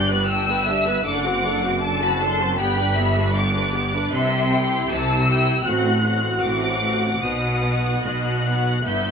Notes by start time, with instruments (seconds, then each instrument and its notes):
Already playing: double bass section G1, cello section G2, violin section D5
0.08 viola section B3 B4, violin section F#6
0.27 viola section D4 G4, violin section G5 E6
0.48 viola section B3 B4
0.65 viola section D4 G4, violin section E5
0.86 viola section B3 B4
1.04 double bass section F#1, cello section F#2, viola section D4 A4, violin section F#5 D6
1.24 viola section C4 F#4
1.43 viola section D4 A4
1.63 viola section C4 F#4
1.81 viola section D4 A4, violin section A5
2.01 viola section C4 F#4, violin section B5
2.20 viola section D4 A4, violin section C6
2.40 viola section C4 F#4
2.58 double bass section G1, cello section G2, viola section B3 G4, violin section G5 B5
2.77 viola section D4 B4
2.97 viola section B3 G4, violin section E5
3.17 viola section D4 B4
3.34 viola section B3 G4, violin section D5 D6
3.54 viola section D4 B4
3.73 viola section B3 G4
3.93 viola section D4 B4
4.12 double bass section C2, cello section C3, violin section E5 C6
4.51 viola section E4 G4, violin section G5
4.89 double bass section C2, cello section C3, violin section A5 E6
5.27 viola section E4 G4, violin section G5
5.64 double bass section A1, cello section A2, viola section C4 F#4, violin section F#5 F#6
6.03 viola section C4 F#4, violin section F#5
6.42 double bass section A1, cello section A2, violin section D6
6.81 viola section C4 F#4
7.21 double bass section B1, cello section B2, violin section D#6
7.62 viola section B3 F#4
8.02 double bass section B1, cello section B2, violin section D#5 F#6
8.43 viola section B3 F#4, violin section F#5
8.83 double bass section G1, cello section G2, viola section B3 E4, violin section E5 G6